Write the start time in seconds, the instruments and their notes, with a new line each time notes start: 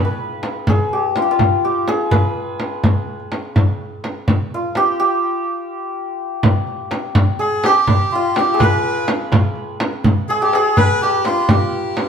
Already playing: santur D#4 F4 G#4
0.05 santur B4
0.19 tombak ka
0.31 tombak ka
0.43 tombak tek, frame drum
0.67 santur G#4, frame drum, tombak dum
0.80 tombak ka
0.93 santur G4
1.16 santur F4, tombak tek, frame drum
1.22 santur G4
1.31 santur F4
1.39 frame drum, tombak dum
1.65 santur G4
1.76 tombak ka
1.88 santur G#4, tombak tek, frame drum
2.11 santur B4, frame drum, tombak dum
2.24 tombak ka
2.60 tombak tek, frame drum
2.84 tombak dum, frame drum
3.20 tombak ka
3.32 tombak tek, frame drum
3.56 tombak dum, frame drum
3.68 tombak ka
4.04 tombak tek, frame drum
4.28 tombak dum, frame drum
4.54 santur F4
4.63 tombak ka
4.75 santur G4, tombak tek, frame drum
5.00 santur G4
6.43 frame drum, tombak dum
6.56 tombak ka
6.67 tombak ka
6.91 tombak tek, frame drum
7.15 tombak dum, frame drum
7.39 santur G#4, melodica G#4, tombak ka
7.64 melodica G4, santur G4, tombak tek, frame drum
7.87 frame drum, tombak dum
8.00 tombak ka
8.11 melodica F4, santur F4, tombak ka
8.35 melodica G4, santur G4, tombak tek, frame drum
8.54 santur G#4
8.59 melodica B4, frame drum, tombak dum
8.64 santur B4
8.84 tombak ka
8.96 tombak ka
9.08 tombak tek, frame drum
9.32 tombak dum, frame drum
9.44 tombak ka
9.55 tombak ka
9.80 tombak tek, frame drum
10.04 frame drum, tombak dum
10.29 melodica G#4, santur G#4, tombak ka
10.39 santur G4, melodica G#4, tombak ka
10.43 melodica G4
10.53 melodica G#4, santur G#4, tombak tek
10.77 melodica B4, santur B4, tombak dum, frame drum
10.89 tombak ka
11.02 melodica G4, santur G4
11.25 melodica F4, santur F4, tombak tek, frame drum
11.49 santur G4, melodica G4, tombak dum, frame drum
11.73 tombak ka
11.85 tombak ka
11.97 tombak tek, frame drum